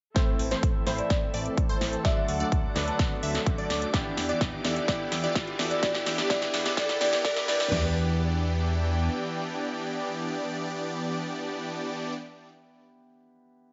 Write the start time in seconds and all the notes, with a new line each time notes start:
0.15 A2 E3 A3 C4 E4 A4 C5 E5, kick, snare, closed hi-hat, riser
0.39 A1, open hi-hat
0.51 E3 A3 C4 A4 C5, snare, closed hi-hat
0.63 A1, kick, closed hi-hat
0.85 A1 A2 E3 A3 C4 E4 A4 C5 B5, snare, open hi-hat
0.98 D5, closed hi-hat
1.10 D5, kick, snare, closed hi-hat
1.34 A1 E3 A3 C4 A4 D5, open hi-hat
1.46 closed hi-hat
1.57 kick, closed hi-hat
1.69 E3 A3 C4 A4 C5, closed hi-hat
1.81 A1, snare, open hi-hat
1.93 closed hi-hat
2.04 D3 F#3 A3 D4 F#4 A4 D5 E5 F#5 D6, kick, snare, closed hi-hat
2.17 E5
2.28 D2 F#5, open hi-hat
2.40 F#3 A3 D4 A4 D5 F#5, closed hi-hat
2.52 D2, kick, closed hi-hat
2.74 D2 D3 F#3 A3 D4 F#4 A4 B4 D5, snare, open hi-hat
2.87 A5, closed hi-hat
2.99 kick, snare, closed hi-hat
3.23 D2 F#3 A3 D4 A4 E5, open hi-hat
3.35 snare, closed hi-hat
3.46 kick, closed hi-hat
3.58 F#3 A3 D4 A4 D5, closed hi-hat
3.70 D2, snare, open hi-hat
3.82 closed hi-hat
3.93 E3 B3 D4 E4 G4 D5 E5, kick, snare, closed hi-hat
4.17 E2, snare, open hi-hat
4.29 E3 B3 D4 G4 D5, closed hi-hat
4.41 E2, kick, snare, closed hi-hat
4.63 E2 E3 B3 D4 E4 G4 A4 D5, snare, open hi-hat
4.76 D5, closed hi-hat
4.87 E3 B3 D4 E4 G4 D5, kick, snare, closed hi-hat
5.12 E2, snare, open hi-hat
5.24 E3 B3 D4 G4 D5, closed hi-hat
5.35 kick, snare, closed hi-hat
5.47 closed hi-hat
5.58 E2 E3 B3 D4 E4 G4 A4 D5, snare, open hi-hat
5.71 D5, closed hi-hat
5.82 E3 B3 D4 E4 G4 D5, kick, snare, closed hi-hat
5.95 snare
6.06 E2, snare, open hi-hat
6.18 E3 B3 D4 G4 D5, snare, closed hi-hat
6.29 E2 E3 B3 D4 E4 G4 D5, kick, snare, closed hi-hat
6.42 snare
6.54 E2, snare, open hi-hat
6.65 E3 B3 D4 G4 D5, snare, closed hi-hat
6.76 E3 B3 D4 E4 G4 D5, kick, snare, closed hi-hat
6.89 snare, closed hi-hat
7.00 E2 E3 B3 D4 E4 G4 D5, snare, open hi-hat
7.13 snare, closed hi-hat
7.24 E3 B3 D4 E4 G4 D5, kick, snare, closed hi-hat
7.36 snare, closed hi-hat
7.47 E2 E3 B3 D4 E4 G4 D5, snare, open hi-hat
7.60 snare, closed hi-hat
7.70 E2 E3 B3 D4 E4 G4 D5 G5, snare, floor tom, crash